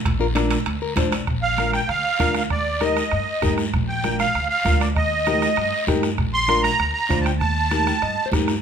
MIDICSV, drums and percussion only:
0, 0, Header, 1, 3, 480
1, 0, Start_track
1, 0, Key_signature, -2, "major"
1, 0, Tempo, 306122
1, 88, Time_signature, 4, 2, 24, 8
1, 13513, End_track
2, 0, Start_track
2, 0, Title_t, "Two-headed folk drums"
2, 84, Note_on_c, 9, 36, 71
2, 85, Note_on_c, 9, 37, 77
2, 241, Note_off_c, 9, 36, 0
2, 242, Note_off_c, 9, 37, 0
2, 574, Note_on_c, 9, 37, 76
2, 731, Note_off_c, 9, 37, 0
2, 802, Note_on_c, 9, 37, 71
2, 959, Note_off_c, 9, 37, 0
2, 1037, Note_on_c, 9, 37, 69
2, 1194, Note_off_c, 9, 37, 0
2, 1520, Note_on_c, 9, 37, 78
2, 1522, Note_on_c, 9, 36, 77
2, 1677, Note_off_c, 9, 37, 0
2, 1679, Note_off_c, 9, 36, 0
2, 1762, Note_on_c, 9, 37, 80
2, 1919, Note_off_c, 9, 37, 0
2, 1996, Note_on_c, 9, 37, 65
2, 2001, Note_on_c, 9, 36, 61
2, 2153, Note_off_c, 9, 37, 0
2, 2158, Note_off_c, 9, 36, 0
2, 2481, Note_on_c, 9, 37, 74
2, 2638, Note_off_c, 9, 37, 0
2, 2720, Note_on_c, 9, 37, 78
2, 2877, Note_off_c, 9, 37, 0
2, 2965, Note_on_c, 9, 37, 67
2, 3122, Note_off_c, 9, 37, 0
2, 3447, Note_on_c, 9, 36, 77
2, 3453, Note_on_c, 9, 37, 73
2, 3604, Note_off_c, 9, 36, 0
2, 3610, Note_off_c, 9, 37, 0
2, 3678, Note_on_c, 9, 37, 70
2, 3835, Note_off_c, 9, 37, 0
2, 3926, Note_on_c, 9, 37, 64
2, 3927, Note_on_c, 9, 36, 68
2, 4083, Note_off_c, 9, 37, 0
2, 4084, Note_off_c, 9, 36, 0
2, 4402, Note_on_c, 9, 37, 65
2, 4559, Note_off_c, 9, 37, 0
2, 4651, Note_on_c, 9, 37, 80
2, 4808, Note_off_c, 9, 37, 0
2, 4884, Note_on_c, 9, 37, 77
2, 5041, Note_off_c, 9, 37, 0
2, 5366, Note_on_c, 9, 37, 78
2, 5374, Note_on_c, 9, 36, 83
2, 5523, Note_off_c, 9, 37, 0
2, 5531, Note_off_c, 9, 36, 0
2, 5609, Note_on_c, 9, 37, 76
2, 5766, Note_off_c, 9, 37, 0
2, 5858, Note_on_c, 9, 36, 74
2, 5858, Note_on_c, 9, 37, 75
2, 6015, Note_off_c, 9, 36, 0
2, 6015, Note_off_c, 9, 37, 0
2, 6337, Note_on_c, 9, 37, 69
2, 6493, Note_off_c, 9, 37, 0
2, 6582, Note_on_c, 9, 37, 76
2, 6738, Note_off_c, 9, 37, 0
2, 6825, Note_on_c, 9, 37, 78
2, 6982, Note_off_c, 9, 37, 0
2, 7301, Note_on_c, 9, 36, 78
2, 7301, Note_on_c, 9, 37, 67
2, 7458, Note_off_c, 9, 36, 0
2, 7458, Note_off_c, 9, 37, 0
2, 7547, Note_on_c, 9, 37, 75
2, 7704, Note_off_c, 9, 37, 0
2, 7782, Note_on_c, 9, 36, 63
2, 7784, Note_on_c, 9, 37, 73
2, 7938, Note_off_c, 9, 36, 0
2, 7941, Note_off_c, 9, 37, 0
2, 8262, Note_on_c, 9, 37, 73
2, 8419, Note_off_c, 9, 37, 0
2, 8502, Note_on_c, 9, 37, 69
2, 8659, Note_off_c, 9, 37, 0
2, 8737, Note_on_c, 9, 37, 75
2, 8893, Note_off_c, 9, 37, 0
2, 9220, Note_on_c, 9, 36, 67
2, 9225, Note_on_c, 9, 37, 72
2, 9377, Note_off_c, 9, 36, 0
2, 9382, Note_off_c, 9, 37, 0
2, 9458, Note_on_c, 9, 37, 75
2, 9615, Note_off_c, 9, 37, 0
2, 9692, Note_on_c, 9, 37, 72
2, 9696, Note_on_c, 9, 36, 68
2, 9849, Note_off_c, 9, 37, 0
2, 9853, Note_off_c, 9, 36, 0
2, 10172, Note_on_c, 9, 37, 69
2, 10329, Note_off_c, 9, 37, 0
2, 10415, Note_on_c, 9, 37, 80
2, 10571, Note_off_c, 9, 37, 0
2, 10657, Note_on_c, 9, 37, 75
2, 10814, Note_off_c, 9, 37, 0
2, 11139, Note_on_c, 9, 36, 79
2, 11143, Note_on_c, 9, 37, 73
2, 11296, Note_off_c, 9, 36, 0
2, 11300, Note_off_c, 9, 37, 0
2, 11384, Note_on_c, 9, 37, 80
2, 11540, Note_off_c, 9, 37, 0
2, 11619, Note_on_c, 9, 36, 73
2, 11622, Note_on_c, 9, 37, 60
2, 11776, Note_off_c, 9, 36, 0
2, 11779, Note_off_c, 9, 37, 0
2, 12095, Note_on_c, 9, 37, 74
2, 12252, Note_off_c, 9, 37, 0
2, 12341, Note_on_c, 9, 37, 77
2, 12498, Note_off_c, 9, 37, 0
2, 12578, Note_on_c, 9, 37, 65
2, 12735, Note_off_c, 9, 37, 0
2, 13058, Note_on_c, 9, 36, 81
2, 13065, Note_on_c, 9, 37, 75
2, 13215, Note_off_c, 9, 36, 0
2, 13222, Note_off_c, 9, 37, 0
2, 13295, Note_on_c, 9, 37, 75
2, 13452, Note_off_c, 9, 37, 0
2, 13513, End_track
3, 0, Start_track
3, 0, Title_t, "Drums"
3, 72, Note_on_c, 9, 63, 33
3, 86, Note_on_c, 9, 74, 58
3, 92, Note_on_c, 9, 65, 59
3, 229, Note_off_c, 9, 63, 0
3, 242, Note_off_c, 9, 74, 0
3, 249, Note_off_c, 9, 65, 0
3, 555, Note_on_c, 9, 63, 71
3, 559, Note_on_c, 9, 65, 64
3, 566, Note_on_c, 9, 73, 57
3, 712, Note_off_c, 9, 63, 0
3, 715, Note_off_c, 9, 65, 0
3, 723, Note_off_c, 9, 73, 0
3, 792, Note_on_c, 9, 65, 65
3, 793, Note_on_c, 9, 73, 70
3, 949, Note_off_c, 9, 65, 0
3, 950, Note_off_c, 9, 73, 0
3, 1024, Note_on_c, 9, 63, 34
3, 1036, Note_on_c, 9, 74, 62
3, 1037, Note_on_c, 9, 65, 66
3, 1181, Note_off_c, 9, 63, 0
3, 1192, Note_off_c, 9, 74, 0
3, 1194, Note_off_c, 9, 65, 0
3, 1503, Note_on_c, 9, 63, 78
3, 1516, Note_on_c, 9, 65, 62
3, 1521, Note_on_c, 9, 73, 66
3, 1660, Note_off_c, 9, 63, 0
3, 1673, Note_off_c, 9, 65, 0
3, 1677, Note_off_c, 9, 73, 0
3, 1756, Note_on_c, 9, 73, 60
3, 1763, Note_on_c, 9, 65, 57
3, 1913, Note_off_c, 9, 73, 0
3, 1920, Note_off_c, 9, 65, 0
3, 1995, Note_on_c, 9, 63, 29
3, 2004, Note_on_c, 9, 74, 54
3, 2152, Note_off_c, 9, 63, 0
3, 2161, Note_off_c, 9, 74, 0
3, 2473, Note_on_c, 9, 63, 66
3, 2479, Note_on_c, 9, 73, 47
3, 2629, Note_off_c, 9, 63, 0
3, 2636, Note_off_c, 9, 73, 0
3, 2731, Note_on_c, 9, 73, 62
3, 2888, Note_off_c, 9, 73, 0
3, 2964, Note_on_c, 9, 74, 68
3, 2968, Note_on_c, 9, 63, 30
3, 3121, Note_off_c, 9, 74, 0
3, 3125, Note_off_c, 9, 63, 0
3, 3442, Note_on_c, 9, 63, 73
3, 3445, Note_on_c, 9, 73, 71
3, 3599, Note_off_c, 9, 63, 0
3, 3602, Note_off_c, 9, 73, 0
3, 3681, Note_on_c, 9, 73, 59
3, 3838, Note_off_c, 9, 73, 0
3, 3925, Note_on_c, 9, 74, 59
3, 3931, Note_on_c, 9, 63, 28
3, 4082, Note_off_c, 9, 74, 0
3, 4088, Note_off_c, 9, 63, 0
3, 4410, Note_on_c, 9, 63, 69
3, 4413, Note_on_c, 9, 73, 54
3, 4567, Note_off_c, 9, 63, 0
3, 4569, Note_off_c, 9, 73, 0
3, 4659, Note_on_c, 9, 73, 64
3, 4816, Note_off_c, 9, 73, 0
3, 4893, Note_on_c, 9, 63, 32
3, 4902, Note_on_c, 9, 74, 61
3, 5050, Note_off_c, 9, 63, 0
3, 5059, Note_off_c, 9, 74, 0
3, 5372, Note_on_c, 9, 63, 80
3, 5388, Note_on_c, 9, 73, 64
3, 5529, Note_off_c, 9, 63, 0
3, 5545, Note_off_c, 9, 73, 0
3, 5622, Note_on_c, 9, 73, 58
3, 5779, Note_off_c, 9, 73, 0
3, 5857, Note_on_c, 9, 63, 30
3, 5864, Note_on_c, 9, 74, 51
3, 6014, Note_off_c, 9, 63, 0
3, 6021, Note_off_c, 9, 74, 0
3, 6332, Note_on_c, 9, 73, 58
3, 6342, Note_on_c, 9, 63, 72
3, 6489, Note_off_c, 9, 73, 0
3, 6499, Note_off_c, 9, 63, 0
3, 6572, Note_on_c, 9, 73, 64
3, 6729, Note_off_c, 9, 73, 0
3, 6818, Note_on_c, 9, 74, 69
3, 6826, Note_on_c, 9, 63, 31
3, 6974, Note_off_c, 9, 74, 0
3, 6982, Note_off_c, 9, 63, 0
3, 7289, Note_on_c, 9, 63, 77
3, 7300, Note_on_c, 9, 73, 71
3, 7446, Note_off_c, 9, 63, 0
3, 7456, Note_off_c, 9, 73, 0
3, 7536, Note_on_c, 9, 73, 61
3, 7692, Note_off_c, 9, 73, 0
3, 7773, Note_on_c, 9, 63, 30
3, 7773, Note_on_c, 9, 74, 54
3, 7930, Note_off_c, 9, 63, 0
3, 7930, Note_off_c, 9, 74, 0
3, 8255, Note_on_c, 9, 73, 51
3, 8264, Note_on_c, 9, 63, 79
3, 8412, Note_off_c, 9, 73, 0
3, 8421, Note_off_c, 9, 63, 0
3, 8496, Note_on_c, 9, 73, 67
3, 8653, Note_off_c, 9, 73, 0
3, 8724, Note_on_c, 9, 74, 69
3, 8741, Note_on_c, 9, 63, 32
3, 8881, Note_off_c, 9, 74, 0
3, 8898, Note_off_c, 9, 63, 0
3, 9208, Note_on_c, 9, 63, 81
3, 9215, Note_on_c, 9, 73, 65
3, 9365, Note_off_c, 9, 63, 0
3, 9372, Note_off_c, 9, 73, 0
3, 9458, Note_on_c, 9, 73, 60
3, 9615, Note_off_c, 9, 73, 0
3, 9684, Note_on_c, 9, 63, 29
3, 9696, Note_on_c, 9, 74, 50
3, 9841, Note_off_c, 9, 63, 0
3, 9853, Note_off_c, 9, 74, 0
3, 10163, Note_on_c, 9, 63, 66
3, 10168, Note_on_c, 9, 73, 50
3, 10320, Note_off_c, 9, 63, 0
3, 10324, Note_off_c, 9, 73, 0
3, 10413, Note_on_c, 9, 73, 63
3, 10570, Note_off_c, 9, 73, 0
3, 10652, Note_on_c, 9, 63, 34
3, 10663, Note_on_c, 9, 74, 68
3, 10809, Note_off_c, 9, 63, 0
3, 10820, Note_off_c, 9, 74, 0
3, 11132, Note_on_c, 9, 63, 78
3, 11139, Note_on_c, 9, 73, 63
3, 11289, Note_off_c, 9, 63, 0
3, 11296, Note_off_c, 9, 73, 0
3, 11380, Note_on_c, 9, 73, 56
3, 11537, Note_off_c, 9, 73, 0
3, 11619, Note_on_c, 9, 63, 30
3, 11623, Note_on_c, 9, 74, 60
3, 11776, Note_off_c, 9, 63, 0
3, 11780, Note_off_c, 9, 74, 0
3, 12090, Note_on_c, 9, 63, 66
3, 12096, Note_on_c, 9, 73, 59
3, 12247, Note_off_c, 9, 63, 0
3, 12253, Note_off_c, 9, 73, 0
3, 12343, Note_on_c, 9, 73, 65
3, 12499, Note_off_c, 9, 73, 0
3, 12574, Note_on_c, 9, 63, 31
3, 12585, Note_on_c, 9, 74, 66
3, 12731, Note_off_c, 9, 63, 0
3, 12742, Note_off_c, 9, 74, 0
3, 13040, Note_on_c, 9, 63, 76
3, 13067, Note_on_c, 9, 73, 69
3, 13196, Note_off_c, 9, 63, 0
3, 13224, Note_off_c, 9, 73, 0
3, 13305, Note_on_c, 9, 73, 61
3, 13461, Note_off_c, 9, 73, 0
3, 13513, End_track
0, 0, End_of_file